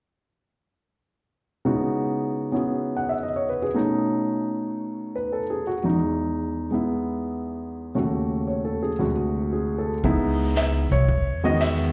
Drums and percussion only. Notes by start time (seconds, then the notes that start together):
10.04 brush sweep, kick
10.56 snare, hi-hat pedal
11.08 brush sweep, kick
11.61 snare, hi-hat pedal